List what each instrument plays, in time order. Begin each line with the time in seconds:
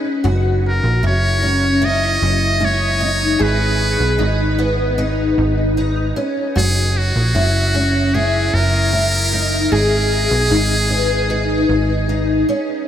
Already playing: twelve-string acoustic guitar C#4
0.24 analog synth bass F#1, twelve-string acoustic guitar F#4
0.68 muted trumpet A#4
0.84 analog synth bass A#1
1.03 analog synth bass F#1, twelve-string acoustic guitar E4, muted trumpet C#5
1.42 twelve-string acoustic guitar C#4
1.82 twelve-string acoustic guitar E4, muted trumpet D#5
2.22 analog synth bass F#1
2.60 twelve-string acoustic guitar E4
2.65 muted trumpet C#5
3.00 twelve-string acoustic guitar D#4
3.39 analog synth bass G#1, twelve-string acoustic guitar G#4, muted trumpet B4
4.00 analog synth bass B1
4.19 analog synth bass G#1, twelve-string acoustic guitar D#4
4.59 twelve-string acoustic guitar B3
4.98 twelve-string acoustic guitar D#4
5.38 analog synth bass G#1
5.77 twelve-string acoustic guitar D#4
6.16 twelve-string acoustic guitar C#4
6.56 analog synth bass F#1, twelve-string acoustic guitar F#4, muted trumpet G#4
6.97 muted trumpet F#4
7.16 analog synth bass A#1
7.35 analog synth bass F#1, twelve-string acoustic guitar E4
7.74 twelve-string acoustic guitar C#4
8.14 twelve-string acoustic guitar E4, muted trumpet G#4
8.54 analog synth bass F#1, muted trumpet A#4
8.93 twelve-string acoustic guitar E4
9.33 twelve-string acoustic guitar D#4
9.72 analog synth bass G#1, twelve-string acoustic guitar G#4, muted trumpet G#4
10.31 analog synth bass B1
10.50 analog synth bass G#1, twelve-string acoustic guitar D#4
10.90 twelve-string acoustic guitar B3
11.30 twelve-string acoustic guitar D#4
11.69 analog synth bass G#1
12.09 twelve-string acoustic guitar D#4
12.49 twelve-string acoustic guitar C#4